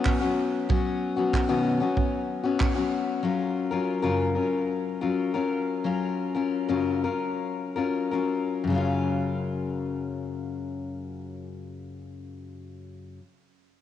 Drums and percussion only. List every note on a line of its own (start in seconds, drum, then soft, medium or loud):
0.05 kick loud
0.05 clap loud
0.70 kick loud
1.33 kick medium
1.33 clap medium
1.97 kick medium
2.60 kick loud
2.60 clap medium